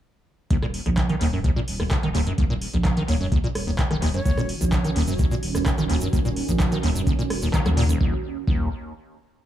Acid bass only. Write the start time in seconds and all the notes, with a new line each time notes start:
0.51 D#2
0.62 A#2
0.86 D#2
1.09 D#3
1.21 D#2
1.33 F#2
1.44 D#2
1.56 A#2
1.80 D#2
2.03 D#3
2.15 D#2
2.27 F#2
2.38 D#2
2.50 A#2
2.74 D#2
2.97 D#3
3.08 D#2
3.20 F#2
3.32 D#2
3.44 A#2
3.67 D#2
3.91 D#3
4.02 D#2
4.14 F#2
4.26 D#2
4.37 A#2
4.61 D#2
4.84 D#3
4.96 D#2
5.08 F#2
5.19 D#2
5.31 A#2
5.55 D#2
5.78 D#3
5.90 D#2
6.02 F#2
6.13 D#2
6.25 A#2
6.49 D#2
6.72 D#3
6.83 D#2
6.95 F#2
7.07 D#2
7.19 A#2
7.42 D#2
7.54 D#3
7.66 F#3
7.77 A#2
7.89 D#1
8.01 D#2
8.47 D#2